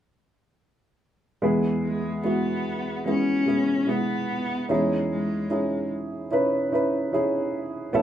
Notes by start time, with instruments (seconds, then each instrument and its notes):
1.42 upright piano E2 E3 G#3 B3 E4 G#4
1.84 cello G#3
2.24 upright piano G#3 B3 E4 F#4, cello B3
3.06 upright piano G#3 B3 E4 G#4, cello C#4
3.46 upright piano G#3 B3 E4 G#4
3.87 upright piano G#3 B3 E4 G#4, cello B3
4.69 upright piano E2 E3 C#4 D#4 E4 G#4, cello G#3
5.12 cello G#3
5.50 upright piano C#4 D#4 E4 G#4
6.31 upright piano C#4 D#4 E4 B4
6.72 upright piano C#4 D#4 E4 B4
7.12 upright piano C#4 D#4 E4 G#4
7.93 upright piano A1 A2 B3 C#4 E4 A4